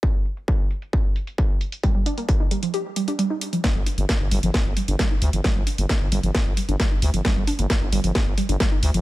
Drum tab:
HH |--xx--xxx-xxx-xx|x-xxx-xxx-xxx-xx|x-oxx-oxx-oxx-ox|x-oxx-oxx-oxx-ox|
SD |----------------|----------------|o---o---o---o---|o---o---o---o---|
BD |o---o---o---o---|o---o-----------|o---o---o---o---|o---o---o---o---|

HH |x-oxx-oxx-oxx-ox|
SD |o---o---o---o---|
BD |o---o---o---o---|